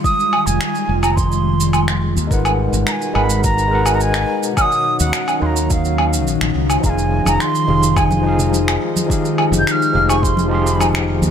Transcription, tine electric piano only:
X:1
M:4/4
L:1/8
Q:1/4=106
K:Fphr
V:1 name="Tine electric piano"
z8 | [A,EB_cg]3 [A,EBcg]2 [A,EBcg]3 | [E,EGdg]3 [E,EGdf]2 z3 | [F,EFAf]3 [F,E=GAf]2 [F,EFAf]3 |
[F,E=GAf]3 [F,EGAf]2 [F,EGAf]3 |]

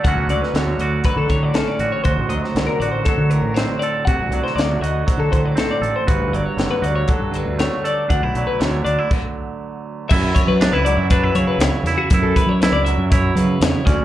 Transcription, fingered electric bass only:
X:1
M:4/4
L:1/16
Q:1/4=119
K:F#phr
V:1 name="Fingered electric bass" clef=bass
D,, C,, C,, z D,,2 D,,2 z D, D,2 z2 A,,, z | D,, A,,, D,, z =C,, z A,,,2 z D,2 A,,,2 z3 | =C, =C,, C,, z D,,2 D,,2 z D, D,2 z2 A,,, z | G,,, D,, G,,, z F,,, z D,,2 z G,,2 D,,2 z3 |
D,, B,,, B,,, z D,,2 D,, z8 z | F,,2 z F,2 C,,2 F,,3 F, z C,, z E,, z | F,,2 z F,2 C,,2 F,,3 F, z E,, z D,, z |]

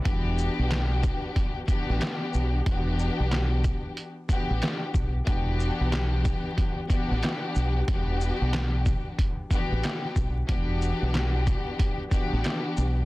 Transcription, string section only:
X:1
M:4/4
L:1/8
Q:"Swing 16ths" 1/4=92
K:Em
V:1 name="String section"
[E,B,DFG]4- [E,B,DFG] [E,B,DFG]3 | [E,B,DFG]4 z [E,B,DFG]2 z | [E,B,DFG]4- [E,B,DFG] [E,B,DFG]3 | [E,B,DFG]4 z [E,B,DFG]2 z |
[E,B,DFG]4- [E,B,DFG] [E,B,DFG]3 |]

